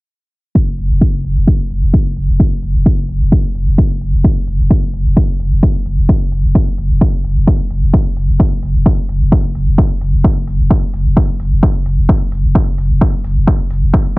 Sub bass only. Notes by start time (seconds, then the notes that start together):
0.67 F#1
0.78 F#1
0.90 F#1
1.13 F#1
1.24 F#1
1.36 F#1
1.59 F#1
1.70 F#1
1.82 F#1
2.06 F#1
2.17 F#1
2.29 F#1
2.52 F#1
2.63 F#1
2.75 F#1
2.98 F#1
3.09 F#1
3.21 F#1
3.44 F#1
3.55 F#1
3.67 F#1
3.90 F#1
4.01 F#1
4.13 F#1
4.36 F#1
4.47 F#1
4.59 F#1
4.82 F#1
4.93 F#1
5.05 F#1
5.29 F#1
5.40 F#1
5.52 F#1
5.75 F#1
5.86 F#1
5.98 F#1
6.21 F#1
6.32 F#1
6.44 F#1
6.67 F#1
6.78 F#1
6.90 F#1
7.13 F#1
7.24 F#1
7.36 F#1
7.59 F#1
7.70 F#1
7.82 F#1
8.06 F#1
8.16 F#1
8.29 F#1
8.52 F#1
8.63 F#1
8.75 F#1
8.98 F#1
9.09 F#1
9.21 F#1
9.44 F#1
9.55 F#1
9.67 F#1
9.90 F#1
10.01 F#1
10.13 F#1
10.36 F#1
10.47 F#1
10.59 F#1
10.83 F#1
10.94 F#1
11.06 F#1
11.29 F#1
11.40 F#1
11.52 F#1
11.75 F#1
11.86 F#1
11.98 F#1
12.21 F#1
12.32 F#1
12.44 F#1
12.67 F#1
12.78 F#1
12.90 F#1
13.13 F#1
13.24 F#1
13.36 F#1
13.59 F#1
13.70 F#1
13.82 F#1
14.06 F#1